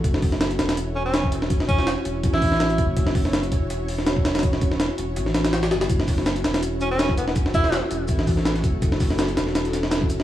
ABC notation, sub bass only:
X:1
M:4/4
L:1/8
Q:"Swing 16ths" 1/4=164
K:F#m
V:1 name="Sub bass" clef=bass
F,,,3 E,,,4- E,,,- | E,,,2 z E,,, A,,,3 F,,, | F,,,3 E,,,4- E,,,- | E,,,2 z E,,, A,,,3 F,,, |
F,,,3 E,,,4- E,,,- | E,,,2 z E,,, A,,,3 F,,, | F,,,3 E,,,4- E,,, |]